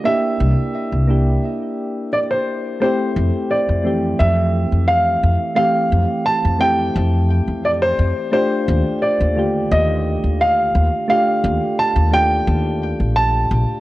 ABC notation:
X:1
M:4/4
L:1/16
Q:1/4=87
K:F
V:1 name="Grand piano"
e12 d c3 | c4 d4 e4 f4 | f4 a2 g4 z2 d c3 | c4 d4 _e4 f4 |
f4 a2 g4 z2 a4 |]
V:2 name="Synth keys"
[B,DEG]6 [B,DEG]8- [B,DEG]2 | [A,CEG]6 [E,A,CG]8- [E,A,CG]2 | [E,A,CG]6 [A,CEG]8- [A,CEG]2 | [A,DFG]6 [D,A,FG]8- [D,A,FG]2 |
[A,DFG]6 [A,DFG]8- [A,DFG]2 |]
V:3 name="Upright bass" clef=bass
z2 C,, z2 C,,3 z8 | z2 F,, z2 F,,3 F,,3 F,,3 F,, z | z2 F,, z2 F,,3 F,,3 F,,3 F,, z | z2 _E,, z2 E,,3 E,,3 E,,3 E,, z |
z2 _E,, z2 E,,3 E,,3 B,,,3 B,,, z |]